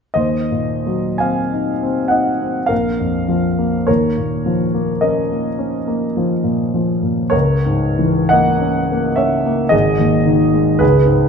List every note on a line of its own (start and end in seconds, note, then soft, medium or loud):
0.14 2.66 D#2 soft
0.14 1.16 C5 soft
0.14 1.19 D#5 medium
0.52 1.07 A#2 soft
0.87 1.40 F#3 soft
1.18 1.71 C4 soft
1.18 2.09 F5 soft
1.18 2.12 G#5 medium
1.52 2.01 D#4 soft
1.83 2.30 C4 soft
2.08 2.58 D#4 soft
2.08 2.66 D#5 soft
2.08 2.68 F#5 soft
2.41 2.70 C4 soft
2.66 3.84 A#1 soft
2.66 3.84 A#4 soft
2.66 3.86 F5 medium
3.00 3.47 F2 soft
3.28 3.76 F3 soft
3.58 3.88 A#3 soft
3.87 7.30 D#2 soft
3.87 4.99 A#4 soft
3.87 5.03 C#5 medium
4.17 4.64 A#2 soft
4.46 4.92 F3 soft
4.74 5.20 A#3 soft
5.01 5.49 C#4 soft
5.01 7.28 A#4 soft
5.01 7.32 D#5 soft
5.31 5.76 A#3 soft
5.59 6.04 C#4 soft
5.87 6.33 A#3 soft
6.17 6.62 F3 soft
6.44 6.90 A#2 soft
6.74 7.22 F3 soft
7.03 7.34 A#2 soft
7.30 9.68 C#2 soft
7.30 8.27 A#4 soft
7.30 8.30 C#5 medium
7.66 8.19 G#2 soft
7.99 8.50 E3 soft
8.29 8.79 A#3 soft
8.29 9.13 D#5 soft
8.29 9.17 F#5 medium
8.61 9.07 C#4 soft
8.92 9.35 A#3 soft
9.16 9.62 C#4 soft
9.16 9.69 C#5 soft
9.16 9.72 E5 medium
9.46 9.73 A#3 soft
9.69 10.78 G#1 soft
9.69 10.77 G#4 soft
9.69 10.81 D#5 medium
10.00 10.44 D#2 soft
10.26 10.71 D#3 soft
10.54 10.82 G#3 soft
10.79 11.29 C#2 soft
10.79 11.29 G#4 soft
10.79 11.29 B4 medium
11.06 11.29 G#2 soft